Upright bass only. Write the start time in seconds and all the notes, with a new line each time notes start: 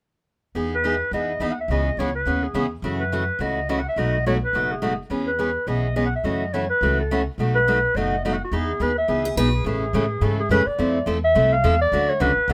0.55 E2
1.11 E2
1.40 D#2
1.68 C#2
1.97 C#2
2.26 D#2
2.54 E2
2.82 F#2
3.39 C#2
3.96 B1
4.53 F#1
5.10 E2
5.67 B1
6.24 F#2
6.81 C#2
7.38 B1
7.95 F#1
8.52 E2
8.79 D#2
9.08 C#2
9.36 B1
9.64 A1
9.93 A2
10.21 G#2
10.49 F#2
10.66 muted upright bass stroke
10.79 F2
11.06 E2
11.35 C2
11.64 E2
11.92 D2
12.20 C#2
12.36 muted upright bass stroke
12.48 B1